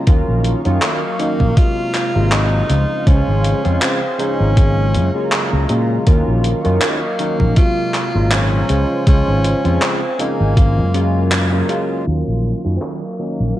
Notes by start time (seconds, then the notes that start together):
0.07 D#2 D#3 F#3 A#3 C#4 F4 D#5 F5 C#6, kick, closed hi-hat
0.28 A#1
0.44 closed hi-hat
0.65 F#2 D#3 F#3 A#3 C#4 F4, closed hi-hat
0.82 A#3, clap, closed hi-hat
1.19 D#3 F#3 A#3 C#4 D#4, closed hi-hat
1.40 A#1, kick
1.57 C3 F#3 G#3 A#3 F4 C5 A#5, kick, closed hi-hat
1.95 clap, closed hi-hat
2.15 G#1 C3 F#3 G#3 A#3 F4
2.32 D#4, clap, closed hi-hat
2.69 C#2 C#3 F3 G#3 C4 F4 G#4 C6, closed hi-hat
3.06 C#2 C#3 F3 G#3 C#4 F4 C5, kick, closed hi-hat
3.28 G#1
3.44 closed hi-hat
3.64 F2 C#3 F3 G#3 C4 F4, closed hi-hat
3.82 C4, clap, closed hi-hat
4.19 C#3 F3 G#3 C#4 D#4 C5, closed hi-hat
4.40 G#1
4.56 C#3 F#3 G#3 A#3 F4 A#5, kick, closed hi-hat
4.94 F#2, closed hi-hat
5.14 C#3 F#3 G#3 A#3 F4
5.32 clap, closed hi-hat
5.53 C#2
5.69 A#2 C#3 F#3 G#3 A#3 F4, closed hi-hat
6.06 D#2 D#3 F#3 A#3 C#4 F4 D#5 F5 C#6, kick, closed hi-hat
6.28 A#1
6.44 closed hi-hat
6.64 F#2 D#3 F#3 A#3 C#4 F4, closed hi-hat
6.82 A#3, clap, closed hi-hat
6.89 G#3
6.97 A#3
7.19 D#3 F#3 A#3 C#4 D#4, closed hi-hat
7.40 A#1, kick
7.56 C3 F#3 G#3 A#3 F4 C5 F5 A#5, kick, closed hi-hat
7.94 clap, closed hi-hat
8.14 G#1 A#2 F#3 G#3 A#3 F4
8.32 C#4, clap, closed hi-hat
8.69 C#2 C#3 F3 G#3 F4 C5 G#5, closed hi-hat
9.06 C#2 C#3 F3 G#3 C#4 F4 C5, kick, closed hi-hat
9.28 G#1
9.44 closed hi-hat
9.64 F2 C#3 F3 G#3 C4 F4, closed hi-hat
9.82 C4, clap, closed hi-hat
10.19 C#3 F3 G#3 A#3 C4 D#4, closed hi-hat
10.40 G#1
10.56 C#3 F#3 G#3 A#3 F4 A#4 F5, kick, closed hi-hat
10.78 F#2
10.94 C#3 F#3 G#3 A#3 F4, closed hi-hat
11.32 clap, closed hi-hat
11.52 C#3 F#3 G#3 A#3 F4
11.69 C#3 F#3 G#3 A#3 F4, closed hi-hat
12.07 D#2 D#3 F#3 A#3 C#4 F4 D#5 F5 C#6
12.27 A#1
12.64 F#2 D#3 F#3 A#3 C#4 F4
12.76 C4
12.82 A#3, clap
13.19 D#3 F#3 A#3 C#4 D#4
13.40 A#1
13.56 C3 F#3 G#3 F4